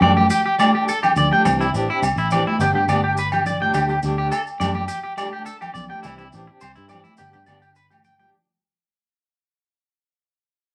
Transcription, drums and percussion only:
0.01 low conga medium
0.01 low agogo medium
0.16 high conga medium
0.30 maracas medium
0.59 high conga medium
0.59 low agogo medium
0.59 maracas medium
0.88 maracas medium
1.03 low conga medium
1.03 low agogo medium
1.03 maracas soft
1.16 low conga medium
1.16 maracas medium
1.33 high conga medium
1.45 low agogo medium
1.45 maracas medium
1.61 maracas soft
1.74 maracas medium
2.03 low agogo medium
2.03 maracas medium
2.17 maracas soft
2.31 low conga medium
2.31 low agogo medium
2.31 maracas medium
2.47 high conga medium
2.60 maracas medium
2.88 high conga medium
2.88 low agogo medium
2.88 maracas medium
3.17 maracas medium
3.32 low conga medium
3.32 low agogo medium
3.32 maracas soft
3.46 low conga medium
3.46 maracas medium
3.62 high conga medium
3.74 low agogo medium
3.74 maracas medium
3.89 maracas soft
4.03 maracas medium
4.32 low agogo medium
4.32 maracas medium
4.47 maracas soft
4.61 low conga medium
4.61 low agogo medium
4.61 maracas medium
4.75 high conga medium
4.88 maracas medium
5.18 high conga medium
5.18 low agogo medium
5.18 maracas medium
5.46 maracas medium
5.62 low conga medium
5.62 low agogo medium
5.62 maracas soft
5.75 low conga medium
5.75 maracas medium
5.90 high conga medium
6.03 low agogo medium
6.03 maracas medium
6.18 maracas soft
6.32 maracas medium
6.61 low agogo medium
6.61 maracas medium
6.75 maracas soft
6.89 low conga medium
6.89 low agogo medium
6.89 maracas medium
7.04 high conga medium
7.04 maracas soft
7.17 maracas medium
7.33 maracas soft
7.46 high conga medium
7.46 low agogo medium
7.46 maracas medium
7.62 maracas soft
7.75 maracas medium
7.91 high conga medium
7.91 low conga medium
7.91 low agogo medium
7.91 maracas soft
8.04 low conga medium
8.04 maracas medium
8.20 high conga medium

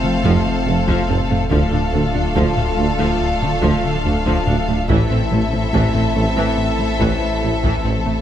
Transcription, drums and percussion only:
0.24 taiko medium
0.88 taiko medium
1.09 taiko low-mid medium
1.30 taiko low-mid medium
1.51 taiko loud
1.73 taiko low-mid medium
1.94 taiko low-mid medium
2.36 taiko medium
2.57 taiko low-mid medium
3.63 taiko medium
4.26 taiko medium
4.47 taiko low-mid medium
4.68 taiko low-mid medium
4.89 taiko loud
5.10 taiko low-mid medium
5.32 taiko low-mid medium
5.74 taiko medium
5.95 taiko low-mid medium
7.00 taiko medium
7.64 taiko medium
7.85 taiko low-mid medium
8.06 taiko low-mid medium

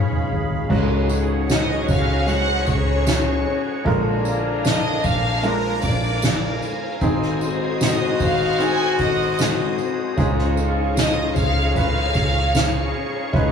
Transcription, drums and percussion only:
0.12 mid tom medium
0.31 floor tom medium
0.50 floor tom medium
0.70 kick loud
0.70 crash loud
1.09 ride medium
1.09 tambourine soft
1.49 snare loud
1.49 ride medium
1.49 tambourine medium
1.88 kick loud
1.88 ride medium
1.88 tambourine medium
2.09 ride soft
2.28 ride medium
2.28 tambourine soft
2.67 kick medium
2.67 ride medium
2.67 tambourine medium
2.87 ride soft
3.06 snare loud
3.06 ride medium
3.06 tambourine medium
3.46 ride medium
3.86 kick loud
3.86 ride medium
4.25 ride medium
4.25 tambourine medium
4.65 snare loud
4.65 ride medium
4.65 tambourine medium
5.04 kick medium
5.04 ride medium
5.04 tambourine medium
5.43 ride medium
5.43 tambourine soft
5.82 kick medium
5.82 ride medium
5.82 tambourine medium
6.03 ride soft
6.22 snare loud
6.22 ride medium
6.22 tambourine loud
6.62 ride medium
6.62 tambourine soft
7.01 kick loud
7.01 ride medium
7.01 tambourine soft
7.22 snare soft
7.41 ride medium
7.41 tambourine medium
7.81 snare loud
7.81 ride medium
7.81 tambourine medium
8.20 kick loud
8.20 ride medium
8.20 tambourine medium
8.60 ride medium
8.60 tambourine soft
8.99 kick medium
8.99 ride medium
8.99 tambourine medium
9.38 snare loud
9.38 ride medium
9.38 tambourine medium
9.78 ride medium
9.78 tambourine soft
10.18 kick loud
10.18 ride medium
10.18 tambourine soft
10.38 snare soft
10.57 ride medium
10.57 tambourine medium
10.97 snare loud
10.97 ride medium
10.97 tambourine medium
11.36 kick medium
11.36 ride medium
11.36 tambourine medium
11.57 ride soft
11.76 kick medium
11.76 ride medium
11.76 tambourine soft
12.14 kick medium
12.14 ride medium
12.14 tambourine medium
12.54 snare loud
12.54 ride medium
12.54 tambourine medium
12.94 ride medium
13.34 kick loud
13.34 ride medium

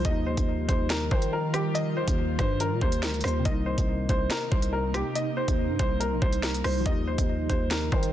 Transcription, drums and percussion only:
0.05 kick loud
0.05 closed hi-hat medium
0.37 kick loud
0.37 closed hi-hat medium
0.69 kick medium
0.69 closed hi-hat medium
0.90 snare loud
0.90 closed hi-hat medium
1.11 kick loud
1.22 closed hi-hat medium
1.54 cross-stick loud
1.54 closed hi-hat medium
1.75 closed hi-hat medium
2.08 kick loud
2.08 closed hi-hat medium
2.39 kick medium
2.39 cross-stick loud
2.39 closed hi-hat medium
2.60 closed hi-hat medium
2.81 kick loud
2.92 closed hi-hat medium
3.03 snare loud
3.14 closed hi-hat soft
3.21 cross-stick loud
3.21 closed hi-hat medium
3.21 open hi-hat medium
3.28 closed hi-hat medium
3.45 kick loud
3.45 closed hi-hat medium
3.78 kick loud
3.78 closed hi-hat medium
4.09 kick medium
4.09 closed hi-hat medium
4.30 snare loud
4.30 closed hi-hat medium
4.52 kick loud
4.62 closed hi-hat medium
4.94 cross-stick loud
4.94 closed hi-hat medium
5.16 closed hi-hat medium
5.48 kick loud
5.48 closed hi-hat medium
5.79 kick medium
5.79 closed hi-hat medium
6.01 closed hi-hat medium
6.22 kick loud
6.33 closed hi-hat medium
6.43 snare loud
6.54 closed hi-hat medium
6.64 cross-stick loud
6.64 closed hi-hat soft
6.64 open hi-hat medium
6.86 kick loud
6.86 closed hi-hat medium
7.18 kick loud
7.18 closed hi-hat medium
7.50 kick medium
7.50 closed hi-hat medium
7.71 snare loud
7.71 closed hi-hat medium
7.92 kick loud
8.03 closed hi-hat medium

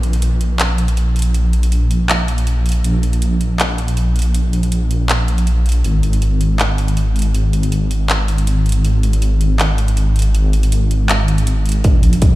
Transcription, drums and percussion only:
0.03 closed hi-hat medium
0.13 closed hi-hat medium
0.22 closed hi-hat medium
0.41 closed hi-hat medium
0.59 clap medium
0.59 closed hi-hat medium
0.78 closed hi-hat medium
0.88 closed hi-hat medium
0.97 closed hi-hat medium
1.16 closed hi-hat soft
1.19 closed hi-hat medium
1.22 closed hi-hat medium
1.34 closed hi-hat medium
1.53 closed hi-hat medium
1.63 closed hi-hat medium
1.72 closed hi-hat medium
1.91 closed hi-hat medium
2.10 clap medium
2.10 closed hi-hat medium
2.28 closed hi-hat medium
2.38 closed hi-hat medium
2.47 closed hi-hat medium
2.66 closed hi-hat soft
2.69 closed hi-hat medium
2.72 closed hi-hat medium
2.84 closed hi-hat medium
3.03 closed hi-hat medium
3.13 closed hi-hat medium
3.22 closed hi-hat medium
3.41 closed hi-hat medium
3.60 clap medium
3.60 closed hi-hat medium
3.78 closed hi-hat medium
3.88 closed hi-hat medium
3.97 closed hi-hat medium
4.16 closed hi-hat soft
4.19 closed hi-hat medium
4.22 closed hi-hat medium
4.34 closed hi-hat medium
4.53 closed hi-hat medium
4.63 closed hi-hat medium
4.72 closed hi-hat medium
4.91 closed hi-hat medium
5.09 clap medium
5.09 closed hi-hat medium
5.28 closed hi-hat medium
5.38 closed hi-hat medium
5.47 closed hi-hat medium
5.66 closed hi-hat soft
5.69 closed hi-hat medium
5.72 closed hi-hat medium
5.84 closed hi-hat medium
6.03 closed hi-hat medium
6.13 closed hi-hat medium
6.22 closed hi-hat medium
6.41 closed hi-hat medium
6.59 clap medium
6.59 closed hi-hat medium
6.78 closed hi-hat medium
6.88 closed hi-hat medium
6.97 closed hi-hat medium
7.16 closed hi-hat soft
7.19 closed hi-hat medium
7.22 closed hi-hat medium
7.35 closed hi-hat medium
7.53 closed hi-hat medium
7.63 closed hi-hat medium
7.72 closed hi-hat medium
7.91 closed hi-hat medium
8.10 clap medium
8.10 closed hi-hat medium
8.28 closed hi-hat medium
8.38 closed hi-hat medium
8.47 closed hi-hat medium
8.66 closed hi-hat soft
8.69 closed hi-hat medium
8.72 closed hi-hat medium
8.85 closed hi-hat medium
9.03 closed hi-hat medium
9.13 closed hi-hat medium
9.22 closed hi-hat medium
9.41 closed hi-hat medium
9.59 clap medium
9.59 closed hi-hat medium
9.78 closed hi-hat medium
9.88 closed hi-hat medium
9.97 closed hi-hat medium
10.16 closed hi-hat soft
10.19 closed hi-hat medium
10.22 closed hi-hat medium
10.35 closed hi-hat medium
10.53 closed hi-hat medium
10.63 closed hi-hat medium
10.72 closed hi-hat medium
10.91 closed hi-hat medium
11.09 clap medium
11.09 closed hi-hat medium
11.28 closed hi-hat medium
11.38 closed hi-hat medium
11.47 closed hi-hat medium
11.66 closed hi-hat soft
11.69 closed hi-hat medium
11.72 closed hi-hat medium
11.84 kick medium
11.84 closed hi-hat medium
12.03 closed hi-hat medium
12.13 closed hi-hat medium
12.22 kick medium
12.22 closed hi-hat medium

